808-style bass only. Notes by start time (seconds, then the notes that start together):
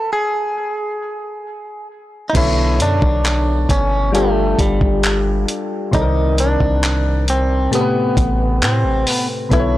2.35 B1
2.80 F#2
3.02 B1
3.69 G1
4.59 G1
4.81 G1
5.93 C2
6.61 C2
8.17 A1
8.62 A2
8.84 A1
9.52 B1